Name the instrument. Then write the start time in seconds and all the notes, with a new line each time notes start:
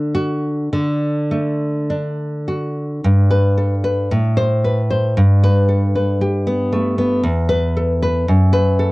nylon-string guitar
Already playing: D3 A3 D4
0.15 F#4
0.73 D3
1.31 A3
1.90 D4
2.48 F#4
3.04 G2
3.30 B4
3.58 A4
3.84 B4
4.11 A2
4.37 C5
4.64 B4
4.90 C5
5.17 G2
5.43 B4
5.69 A4
5.95 B4
6.21 G4
6.47 B3
6.73 A3
6.98 B3
7.23 E2
7.49 B4
7.77 A4
8.02 B4
8.28 F#2
8.53 B4
8.79 A4